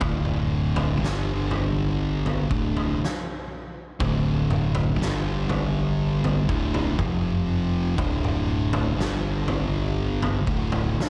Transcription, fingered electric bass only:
0.02 0.97 D1 medium
1.01 2.46 G1 loud
2.51 2.97 D1 medium
4.01 4.96 D1 medium
4.99 6.45 G1 loud
6.49 6.95 D1 loud
6.99 7.95 F1 medium
7.98 8.94 D1 medium
8.98 10.44 G1 loud
10.48 10.94 D1 medium

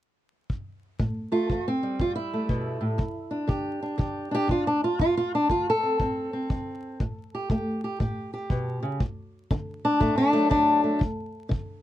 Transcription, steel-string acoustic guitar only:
0.99 1.46 A2 medium
1.32 1.49 A3 soft
1.32 1.66 F4 medium
1.51 1.96 E3 soft
1.51 1.67 A3 soft
1.68 2.00 C4 medium
1.83 2.98 G3 soft
2.00 2.46 E2 medium
2.00 2.15 F4 medium
2.16 3.48 E4 medium
2.34 3.00 A3 soft
2.49 2.80 B2 medium
2.81 2.98 A2 medium
2.98 3.45 G2 medium
3.31 3.82 D4 soft
3.48 3.95 D3 medium
3.48 3.97 G4 soft
3.83 4.30 D4 soft
3.98 4.45 D3 medium
3.98 4.32 G4 soft
4.31 4.66 D4 soft
4.31 4.50 G4 loud
4.47 4.95 D3 medium
4.47 4.67 F4 medium
4.67 4.83 D4 medium
4.84 5.00 F4 medium
4.99 5.46 D2 medium
4.99 5.16 F4 medium
5.17 5.33 F4 medium
5.35 5.50 D4 medium
5.49 5.96 D3 medium
5.49 5.67 F4 medium
5.70 7.34 A4 medium
5.83 6.00 C4 soft
6.00 6.47 A2 medium
6.00 6.32 C4 soft
6.33 6.98 C4 soft
6.51 6.97 D3 medium
7.01 7.47 A2 medium
7.35 7.50 G4 soft
7.51 7.97 A3 medium
7.51 7.83 G4 soft
7.84 8.00 G4 soft
8.00 8.47 A2 medium
8.00 8.32 G4 soft
8.34 8.99 G4 soft
8.51 8.82 B2 medium
8.83 9.00 C#3 medium
9.00 9.47 D2 medium
9.51 9.98 D3 medium
9.85 10.16 D4 medium
10.00 10.47 A2 medium
10.00 10.32 A3 medium
10.18 10.50 D4 medium
10.33 11.01 F#3 soft
10.33 10.83 A3 medium
10.50 10.97 D3 medium
10.50 11.01 D4 medium
10.84 11.01 A3 soft
10.99 11.47 G2 medium
11.49 11.82 D3 medium

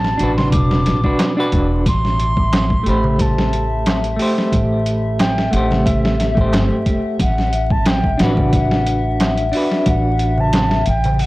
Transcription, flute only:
0.00 0.33 A5 loud
0.37 0.51 C6 loud
0.52 1.48 D6 loud
1.88 2.90 C6 loud
2.88 3.23 B5 loud
3.21 4.20 A5 medium
5.20 5.53 G5 loud
5.52 5.88 F#5 loud
5.86 6.53 E5 medium
7.21 7.73 F#5 loud
7.72 7.88 A5 loud
7.87 8.23 G5 loud
8.21 9.54 F#5 loud
9.89 10.42 F#5 loud
10.40 10.87 A5 loud
10.88 11.23 G5 loud
11.22 11.26 F#5 medium

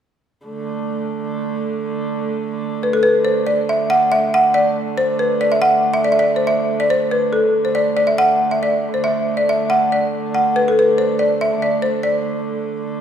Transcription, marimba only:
2.83 2.94 B4 medium
2.93 3.05 A4 medium
3.03 3.26 B4 medium
3.25 3.48 C5 medium
3.47 3.69 D5 medium
3.69 3.91 E5 medium
3.90 4.10 F#5 medium
4.12 4.34 E5 medium
4.34 4.54 F#5 medium
4.54 4.94 D5 medium
4.98 5.20 C5 medium
5.19 5.41 B4 medium
5.41 5.52 D5 medium
5.52 5.63 E5 medium
5.62 5.92 F#5 medium
5.94 6.05 E5 medium
6.04 6.11 D5 medium
6.12 6.19 E5 medium
6.19 6.36 D5 medium
6.36 6.47 C5 medium
6.47 6.80 E5 medium
6.80 6.90 D5 medium
6.90 7.10 C5 medium
7.11 7.32 B4 medium
7.33 7.66 A4 medium
7.65 7.70 C5 medium
7.75 7.95 D5 medium
7.97 8.08 D5 medium
8.07 8.19 E5 medium
8.18 8.52 F#5 medium
8.51 8.61 E5 medium
8.63 8.95 D5 medium
8.94 8.99 C5 medium
9.04 9.34 E5 medium
9.37 9.48 D5 medium
9.49 9.68 E5 medium
9.70 9.91 F#5 medium
9.92 10.35 D5 medium
10.35 10.56 F#5 medium
10.56 10.66 B4 medium
10.68 10.77 A4 medium
10.79 10.99 B4 medium
10.98 11.17 C5 medium
11.19 11.41 D5 medium
11.41 11.62 E5 medium
11.62 11.81 D5 medium
11.82 12.02 C5 medium
12.03 13.01 D5 medium

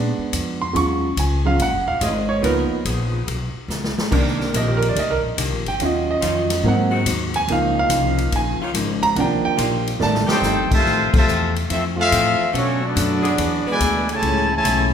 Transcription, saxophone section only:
2.00 2.43 F#3 loud
2.00 2.43 C#4 medium
2.00 2.43 F4 loud
2.00 2.43 G#4 loud
2.43 2.83 F3 medium
2.43 2.83 D#4 medium
2.43 2.84 A#4 loud
2.84 3.49 F3 loud
2.84 3.50 B3 medium
2.84 3.49 D#4 medium
2.84 3.49 G#4 loud
4.10 4.51 D#3 loud
4.10 4.52 C4 medium
4.10 4.52 D4 medium
4.10 4.52 A#4 loud
4.54 5.18 D#3 medium
4.54 5.18 C4 medium
4.54 5.18 D4 medium
4.54 5.18 A#4 loud
6.20 6.40 D#3 loud
6.20 6.40 F#3 medium
6.20 6.40 C#4 medium
6.20 6.40 F4 loud
6.90 7.44 D#3 loud
6.90 7.45 G#3 loud
6.90 7.44 C4 loud
6.90 7.44 F#4 loud
8.61 8.71 D#3 loud
8.61 8.71 A#3 loud
8.61 8.70 C#4 loud
8.61 8.70 F4 loud
9.56 10.00 D#3 medium
9.56 10.00 A#3 medium
9.56 10.00 D4 medium
9.56 9.99 F4 loud
10.26 10.37 D#3 loud
10.26 10.37 A3 medium
10.26 10.37 D4 loud
10.26 10.37 G4 loud
12.52 12.72 F#3 loud
12.52 12.71 B3 medium
12.52 12.72 D4 medium
12.52 12.72 A4 loud
13.22 13.33 E3 loud
13.22 13.32 B3 loud
13.22 13.32 D4 loud
13.22 13.32 G#4 loud
13.65 13.76 E3 medium
13.65 13.76 B3 medium
13.65 13.75 D4 medium
13.65 13.76 B4 loud

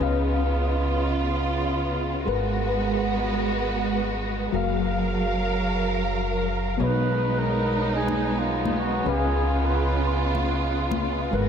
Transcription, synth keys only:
0.00 2.23 C#4 medium
0.00 2.24 G#4 medium
0.00 2.24 B4 medium
0.00 2.25 D#5 medium
0.00 2.25 F5 medium
2.25 4.50 G#3 medium
2.25 4.50 G#4 medium
2.25 4.51 A#4 medium
2.25 4.51 B4 medium
2.25 4.52 F#5 medium
4.52 6.76 F#3 medium
4.52 6.77 F#4 medium
4.52 6.77 G#4 medium
4.52 6.78 A#4 medium
4.52 6.78 F5 medium
6.77 9.03 F#3 medium
6.77 9.02 B3 medium
6.77 9.03 G#4 medium
6.77 9.04 C#5 medium
6.82 9.04 D#5 medium
9.05 11.29 C#4 medium
9.05 11.30 G#4 medium
9.05 11.30 B4 medium
9.05 11.30 D#5 medium
9.09 11.31 F5 medium
11.31 11.49 G#3 medium
11.31 11.49 G#4 medium
11.31 11.49 A#4 medium
11.31 11.49 B4 medium
11.31 11.49 F#5 medium

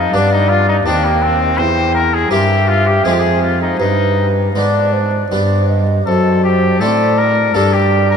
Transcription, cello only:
0.00 0.12 F2 medium
0.13 0.84 G2 medium
0.85 1.59 D#2 medium
1.58 2.31 E2 medium
2.31 3.04 G2 medium
3.05 3.79 F2 medium
3.80 4.54 G2 medium
4.55 5.29 G#2 soft
5.30 6.05 G2 medium
6.07 6.82 F#2 medium
6.80 7.54 A2 medium
7.55 8.17 G2 medium

